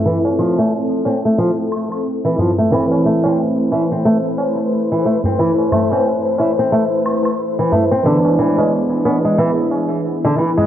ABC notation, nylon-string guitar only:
X:1
M:4/4
L:1/16
Q:"Swing 16ths" 1/4=90
K:none
V:1 name="Nylon-string guitar"
E, z F, A, z2 C A, F, z4 E, F, A, | E, z A, C z2 E C A, z4 E, A, C | E, z A, C z2 E C A, z4 E, A, C | D, z E, ^G, z2 B, G, E, z4 D, E, G, |]